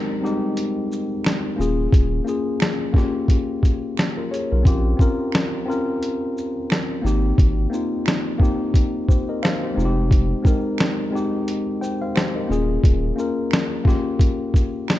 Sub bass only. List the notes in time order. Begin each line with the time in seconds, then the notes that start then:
1.59 D#1
1.93 D#1
4.52 B1
4.65 A#1
7.04 G#1
7.38 G#1
9.77 F1
12.50 D#1
12.84 D#1